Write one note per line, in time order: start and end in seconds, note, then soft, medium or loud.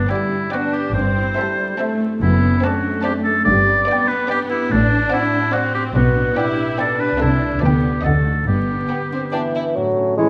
0.00 0.94 G2 soft
0.00 0.12 D4 medium
0.00 0.31 D4 soft
0.00 0.97 D5 soft
0.10 0.52 G3 soft
0.10 0.41 B3 soft
0.10 0.52 E4 medium
0.10 0.73 G4 soft
0.10 0.42 D5 soft
0.10 0.42 G5 soft
0.32 0.97 D4 soft
0.52 0.85 B3 soft
0.52 0.98 B3 soft
0.52 0.95 D4 medium
0.52 0.75 F#4 medium
0.52 0.85 D5 soft
0.52 0.85 G5 soft
0.73 0.94 G4 medium
0.73 2.23 G4 soft
0.94 1.29 G1 medium
0.94 1.29 G2 medium
0.94 2.23 G2 soft
0.94 1.38 C4 medium
0.94 1.98 C5 medium
1.17 1.57 E4 soft
1.37 1.80 G3 soft
1.37 1.68 C4 soft
1.37 1.99 A4 soft
1.37 1.68 E5 soft
1.37 1.69 A5 soft
1.58 2.22 E4 soft
1.78 2.20 A3 medium
1.78 3.02 C4 soft
1.78 2.10 C4 medium
1.78 2.10 E5 medium
1.78 2.10 A5 medium
2.00 2.61 A4 soft
2.21 2.54 F#1 medium
2.21 3.48 F#2 soft
2.21 2.54 F#2 medium
2.21 2.61 B3 medium
2.21 2.65 E4 medium
2.41 2.81 D4 soft
2.62 3.46 A3 medium
2.62 2.93 C4 medium
2.62 3.04 F#4 medium
2.62 3.24 A4 soft
2.62 2.93 D5 medium
2.62 2.93 A5 medium
2.83 3.66 D4 soft
3.03 3.48 C4 soft
3.03 3.36 C4 medium
3.03 3.14 G4 medium
3.03 3.36 D5 medium
3.03 3.35 A5 medium
3.24 3.44 A4 medium
3.24 3.48 A4 soft
3.45 3.80 G1 medium
3.45 4.72 G2 medium
3.45 3.80 G2 medium
3.45 3.88 G3 soft
3.45 4.09 D5 medium
3.67 4.09 D4 soft
3.87 4.18 B3 medium
3.87 4.29 B3 medium
3.87 4.49 G4 soft
3.87 4.19 D5 medium
3.87 4.19 G5 medium
4.08 4.91 D4 soft
4.08 4.29 B4 medium
4.29 4.60 B3 medium
4.29 4.72 B3 soft
4.29 4.71 B3 medium
4.29 4.39 G4 medium
4.29 4.60 D5 medium
4.29 4.61 G5 medium
4.50 4.74 E4 medium
4.50 4.72 G4 soft
4.71 5.04 A1 medium
4.71 5.03 A2 medium
4.71 5.96 A2 medium
4.71 5.54 D4 medium
4.71 5.13 D4 medium
4.92 5.33 D4 soft
5.11 5.42 C4 medium
5.11 5.54 E4 medium
5.11 5.74 F#4 soft
5.11 5.42 D5 medium
5.11 5.43 F#5 medium
5.35 6.15 D4 soft
5.53 5.84 C4 medium
5.53 5.94 C4 medium
5.53 5.97 C4 soft
5.53 5.74 F#4 medium
5.53 5.84 D5 medium
5.53 5.84 F#5 medium
5.75 5.97 F#4 soft
5.75 5.84 G4 medium
5.95 6.28 B1 medium
5.95 7.21 B2 soft
5.95 6.28 B2 medium
5.95 6.36 B3 medium
5.95 6.38 F#4 medium
6.16 6.56 D4 soft
6.36 6.67 B3 soft
6.36 6.77 E4 medium
6.36 6.78 G4 medium
6.36 6.98 G4 soft
6.36 6.67 D5 soft
6.36 6.67 G5 soft
6.57 7.21 D4 soft
6.78 7.09 B3 medium
6.78 7.22 B3 soft
6.78 7.62 D4 medium
6.78 7.02 A4 medium
6.78 7.09 D5 medium
6.78 7.09 G5 soft
6.99 7.21 G4 soft
6.99 7.20 B4 medium
7.18 7.52 C2 medium
7.18 7.63 C3 soft
7.18 7.53 C3 medium
7.18 7.50 A3 soft
7.18 7.62 E4 medium
7.18 7.50 E5 soft
7.18 7.51 A5 soft
7.40 7.63 E4 soft
7.40 7.63 A4 soft
7.61 7.95 D2 soft
7.61 7.95 D3 medium
7.61 8.04 D3 soft
7.61 7.93 B3 soft
7.61 8.04 B3 soft
7.61 8.03 G4 medium
7.61 7.93 D5 soft
7.61 7.93 G5 soft
7.83 8.69 D4 soft
7.83 8.06 G4 soft
8.03 8.38 D2 soft
8.03 8.38 D3 soft
8.03 8.49 D3 soft
8.03 8.47 A3 soft
8.03 8.35 C4 soft
8.03 8.46 A4 medium
8.03 8.35 D#5 soft
8.03 8.36 F#5 soft
8.26 8.49 D#4 soft
8.26 8.49 F#4 soft
8.47 8.81 G1 soft
8.47 8.81 G2 soft
8.47 9.78 G2 soft
8.47 9.52 B3 soft
8.47 9.52 G4 soft
8.70 9.12 D4 soft
8.89 8.97 B3 soft
8.89 9.55 G4 soft
8.89 9.21 G5 soft
9.13 9.21 C4 soft
9.13 9.78 D4 soft
9.32 9.78 E3 soft
9.32 9.78 B3 soft
9.32 9.41 D4 soft
9.32 9.65 G5 soft
9.55 9.63 E4 soft
9.55 9.78 G4 soft
9.74 10.29 A2 soft
9.74 10.16 F#3 soft
9.74 10.29 A3 soft
9.96 10.29 C#4 soft
10.16 10.29 E3 soft
10.16 10.29 G#3 medium
10.16 10.29 E4 soft
10.16 10.29 C#5 soft
10.16 10.24 E5 soft